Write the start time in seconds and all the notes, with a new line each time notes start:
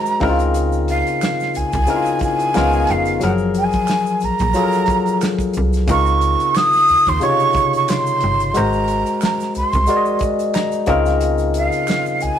Already playing: G#3 F#4 A#4 C5 A#5
0.06 shaker
0.20 C#2 C#3 C4 D#4 E4 A#4, kick, open hi-hat
0.29 F4
0.39 closed hi-hat, shaker
0.54 closed hi-hat, shaker
0.72 shaker
0.88 F5, closed hi-hat, shaker
1.07 closed hi-hat, shaker
1.21 finger snap, snare, closed hi-hat, shaker
1.40 snare, shaker
1.54 C2 G#5, closed hi-hat, shaker
1.72 C2, kick, closed hi-hat, shaker
1.87 C#3 C4 D#4 E4 A#4, closed hi-hat, shaker
1.96 F4
2.05 shaker
2.19 kick, closed hi-hat, shaker
2.24 G#5
2.39 closed hi-hat, shaker
2.54 C#2 C#3 B3 D#4 F4 A#4, finger snap, snare, closed hi-hat, shaker
2.72 shaker
2.87 F1 F5, closed hi-hat
3.05 closed hi-hat, shaker
3.20 F#1 F3 F#3 G#4 A#4, closed hi-hat, shaker
3.24 F#5
3.38 shaker
3.54 G#5, closed hi-hat, shaker
3.72 kick, closed hi-hat, shaker
3.87 finger snap, snare, closed hi-hat, shaker
4.06 shaker
4.20 A#1, closed hi-hat, shaker
4.24 A#5
4.39 A#1, kick, closed hi-hat, shaker
4.54 F#3 F4 G#4 A4, closed hi-hat, shaker
4.63 A#4
4.72 closed hi-hat, shaker
4.86 kick, closed hi-hat, shaker
5.06 closed hi-hat, shaker
5.21 finger snap, snare, closed hi-hat, shaker
5.39 kick, closed hi-hat, shaker
5.54 C2, closed hi-hat, shaker
5.73 snare, closed hi-hat, shaker
5.87 C#2 C#3 C4 D#4 F4 A#4 C#6, kick, closed hi-hat, shaker
6.06 closed hi-hat, shaker
6.21 closed hi-hat, shaker
6.40 closed hi-hat, shaker
6.55 D#6, finger snap, snare, closed hi-hat, shaker
6.73 snare, shaker
6.88 D#2, closed hi-hat, shaker
7.06 D#2 C6, kick, closed hi-hat, shaker
7.20 C3 C#3 D#4 F4 C#5 C#6, closed hi-hat, shaker
7.40 shaker
7.53 kick, closed hi-hat, shaker
7.73 C#6, closed hi-hat, shaker
7.88 C6, finger snap, snare, closed hi-hat, shaker
8.06 closed hi-hat, shaker
8.21 G1, closed hi-hat
8.40 closed hi-hat, shaker
8.54 G#1 G#3 F#4 A#4 C5 A#5, closed hi-hat, shaker
8.73 shaker
8.88 closed hi-hat, shaker
9.06 closed hi-hat, shaker
9.21 A#5, finger snap, snare, closed hi-hat, shaker
9.40 snare, shaker
9.55 C2 C6, closed hi-hat, shaker
9.73 C2, kick, closed hi-hat, shaker
9.87 G#3 F#4 A#4 D5, closed hi-hat, shaker
9.97 D#5
10.05 shaker
10.19 kick, closed hi-hat, shaker
10.39 closed hi-hat, shaker
10.54 A#5, finger snap, snare, closed hi-hat, shaker
10.72 closed hi-hat, shaker
10.86 C#2 C#3 C4 D#4 F4 A#4 D#5, kick, closed hi-hat
11.06 snare, closed hi-hat, shaker
11.21 closed hi-hat, shaker
11.38 closed hi-hat, shaker
11.54 F5, closed hi-hat, shaker
11.72 closed hi-hat, shaker
11.87 finger snap, snare, closed hi-hat, shaker
12.06 shaker
12.20 C2 G#5, closed hi-hat, shaker